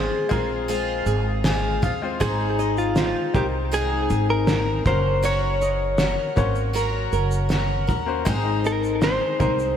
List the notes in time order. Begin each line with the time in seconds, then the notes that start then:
Already playing: G#3 C4 F4 G#4 C5
0.29 A#1 G#3 C4 F4 G#4 A#4, kick, shaker
0.68 G#3 C4 F4 G#4, shaker
1.06 G#1 G#4, shaker
1.44 G#3 C4 F4 G#4 G#5, snare, shaker
1.82 D#2 C4 F4 G#4 F5, kick, shaker
2.02 G#3 C4 F4 C5
2.20 G#1 G#2 D#3 G#3 C4 D#4 G#4 C5, kick, shaker
2.59 D#5, shaker
2.78 F4, shaker
2.96 G#3 C4 D#4 C5, snare, shaker
3.34 C2 G#3 C4 D#4 G4 A#4 C5, kick, shaker
3.71 G#2 D#3 G#3 C4 D#4 G#4, shaker
4.10 G#1 G#4, shaker
4.30 A#4
4.47 G#3 C4 D#4 G#4, snare, shaker
4.85 F#1 A#3 C#4 F#4 A#4 C5, kick, shaker
5.23 F#3 C#4 F#4 A#4 C#5, shaker
5.62 D#5, shaker
5.98 F#3 C#4 F#4 A#4 C#5, snare, shaker
6.36 G#1 A#3 C#4 F#4 C5 C#5, kick, shaker
6.55 shaker
6.73 F#3 C#4 F#4 A#4, shaker
7.12 F#1 A#4, shaker
7.31 shaker
7.49 F#3 C#4 F#4 A#4, snare, shaker
7.87 D#2 C#4 F#4 A#4, kick, shaker
8.06 A#3 C#4 F#4 C5
8.25 G#1 G#2 D#3 G#3 C4 D#4 G#4 C5, kick, shaker
8.64 A#4 D#5, shaker
8.83 shaker
9.01 G#3 C4 D#4 G#4 C5, snare, shaker
9.40 C2 G#3 C4 D#4 A#4 C5, kick, shaker
9.59 shaker